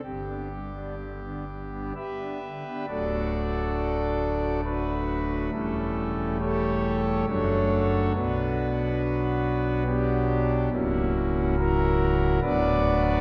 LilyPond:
<<
  \new Staff \with { instrumentName = "Pipe organ" } { \time 3/4 \key g \major \tempo 4 = 69 g'2 <g' b' e''>4 | \key d \major <fis' a' d''>2 <d' fis' b'>4 | <cis' e' a'>4 <g' a' cis''>4 <fis' a' cis''>4 | <d' fis' b'>2 <b d' g'>4 |
<ais cis' fis'>4 <e' fis' ais'>4 <fis' b' d''>4 | }
  \new Staff \with { instrumentName = "Pipe organ" } { \clef bass \time 3/4 \key g \major << { g,16 <b d'>16 g16 <b d'>16 d16 <b d'>16 g16 <b d'>16 r16 <b d'>16 d16 <b d'>16 | \key d \major <d, fis a d'>2. | <e, g a>2 <fis, fis a d'>4 | <b, fis b>2. |
<cis, fis e'>2 <d, fis b d'>4 | } \\ { g,,2 r4 | d,,2. | e,,2 fis,,4 | b,,2. |
cis,,2 d,,4 | } >> }
>>